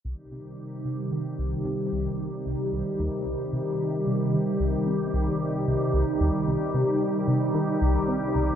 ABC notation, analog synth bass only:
X:1
M:4/4
L:1/8
Q:1/4=112
K:Cm
V:1 name="Analog synth bass" clef=bass
C,, C, z C, E, C,, C, C,, | z C,, C,, E,, C,, C, z C, | E, C,, C, C,, z C,, C,, E,, | C,, C, z C, E, C,, C, C,, |]